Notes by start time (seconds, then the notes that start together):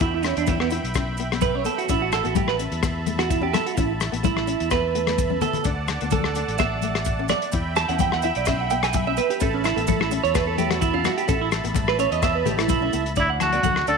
0.00 E2 E4 E5 G5 B5, kick, closed hi-hat
0.14 E4
0.23 C#4, cross-stick, closed hi-hat, muted conga, maracas
0.37 E2 D4, closed hi-hat
0.47 B3 E4, kick, closed hi-hat, high conga, maracas
0.60 B3, cross-stick
0.70 E4, closed hi-hat, maracas
0.84 B1, closed hi-hat
0.94 C#4, kick, cross-stick, closed hi-hat, muted conga, maracas
1.17 B3, closed hi-hat, maracas
1.32 B3, cross-stick, closed hi-hat
1.41 B4, kick, closed hi-hat, high conga, maracas
1.55 C#4 C#5
1.65 B3 A4, closed hi-hat, muted conga, maracas
1.78 F#4, closed hi-hat
1.88 A1 C#4 E4 A5, kick, closed hi-hat, muted conga, maracas
2.02 F#4
2.12 A4, cross-stick, closed hi-hat, muted conga, maracas
2.24 A1 B3 F#4, closed hi-hat
2.35 A3 G4, kick, closed hi-hat, high conga, maracas
2.48 B4, cross-stick
2.59 C#4, closed hi-hat, maracas
2.72 E2, closed hi-hat
2.83 B3, kick, cross-stick, closed hi-hat, muted conga, maracas
3.06 A3, closed hi-hat, high conga, maracas
3.18 B3 F#4, cross-stick, closed hi-hat
3.30 E4, kick, closed hi-hat, maracas
3.41 C#4 G4
3.53 B3 A4, cross-stick, closed hi-hat, muted conga, high conga, maracas
3.66 F#4, closed hi-hat
3.77 A1 C#4 E4, kick, closed hi-hat, muted conga, maracas
4.00 cross-stick, closed hi-hat, muted conga, maracas
4.12 A1 B3, closed hi-hat
4.23 A3 E4, kick, closed hi-hat, high conga, maracas
4.37 cross-stick
4.47 C#4, closed hi-hat, maracas
4.60 E2, closed hi-hat
4.70 B3 B4, kick, cross-stick, closed hi-hat, muted conga, maracas
4.95 A3, closed hi-hat
5.07 A3, cross-stick, closed hi-hat
5.18 kick, closed hi-hat, high conga, maracas
5.30 C#4, high conga
5.41 B3 A4, closed hi-hat, low conga, maracas
5.53 closed hi-hat, low conga
5.63 D2 D4 D5 F#5 A5, kick, closed hi-hat, maracas
5.88 cross-stick, closed hi-hat, muted conga, maracas
6.01 D2 B3, closed hi-hat
6.11 A3 A4, kick, closed hi-hat, high conga, maracas
6.24 cross-stick
6.35 D4, closed hi-hat, maracas
6.48 A1, closed hi-hat
6.58 B3 E5, kick, cross-stick, closed hi-hat, muted conga, maracas
6.82 A3, closed hi-hat, high conga, maracas
6.95 cross-stick, closed hi-hat
7.05 kick, closed hi-hat, maracas
7.19 C#4
7.28 B3 D5, cross-stick, closed hi-hat, muted conga, high conga, maracas
7.42 closed hi-hat
7.52 E2 E4 E5 G5 B5, kick, closed hi-hat, muted conga, maracas
7.76 A5, cross-stick, closed hi-hat, muted conga, maracas
7.89 E2 C#4 F#5, closed hi-hat
7.99 B3 G5, kick, closed hi-hat, high conga, maracas
8.12 F#5, cross-stick
8.22 E4 E5, closed hi-hat, maracas
8.35 B1 D5, closed hi-hat
8.45 C#4 E5, kick, cross-stick, closed hi-hat, muted conga, maracas
8.60 F#5
8.70 B3 G5, closed hi-hat, maracas
8.83 G#5, muted nylon-string guitar stroke, cross-stick, closed hi-hat
8.93 E5, kick, closed hi-hat, high conga, maracas
9.07 C#4 E5
9.17 B3 B4, closed hi-hat, muted conga, maracas
9.30 G4, closed hi-hat
9.39 A1 C#4 A4 A5 B5, kick, closed hi-hat, muted conga, maracas
9.54 C#4
9.64 E4, cross-stick, closed hi-hat, muted conga, maracas
9.76 A1 B3 A4, closed hi-hat
9.87 A3 A4, kick, closed hi-hat, high conga, maracas
10.00 E4, cross-stick
10.11 C#4, muted clean electric guitar stroke, closed hi-hat, maracas
10.24 E2 C#5, closed hi-hat
10.34 B3 B4, kick, cross-stick, closed hi-hat, muted conga, maracas
10.47 A4
10.58 A3 G4, closed hi-hat, high conga, maracas
10.70 A3 F#4, cross-stick, closed hi-hat
10.81 E4, kick, closed hi-hat, maracas
10.94 C#4 F4
11.04 B3 F#4, cross-stick, closed hi-hat, high conga, maracas
11.18 G4, closed hi-hat
11.28 A1 C#4 A4, kick, closed hi-hat, muted conga, maracas
11.41 E4
11.52 cross-stick, closed hi-hat, muted conga, maracas
11.64 A1 B3, closed hi-hat
11.75 muted nylon-string guitar stroke, kick, closed hi-hat, high conga, maracas
11.88 B4, cross-stick
11.99 C#4 C#5, closed hi-hat, maracas
12.11 E2 D#5, closed hi-hat
12.22 B3 E5, kick, cross-stick, closed hi-hat, muted conga, maracas
12.35 B4
12.45 A1 A3 G4, closed hi-hat, low conga, maracas
12.58 A3 E4, cross-stick, closed hi-hat
12.68 B1 E4, kick, closed hi-hat, high conga, maracas
12.82 C#4
12.92 C#2 B3, closed hi-hat, muted conga, maracas
13.06 closed hi-hat
13.16 D2 D4 E4 D5, kick, closed hi-hat, muted conga, maracas
13.30 F#5
13.40 F#4 A5, cross-stick, closed hi-hat, muted conga, high conga, maracas
13.53 B3 D5, closed hi-hat
13.63 D2 A3 F#5, kick, closed hi-hat, high conga, maracas
13.76 cross-stick
13.87 D2 D4 A4 D5, closed hi-hat, maracas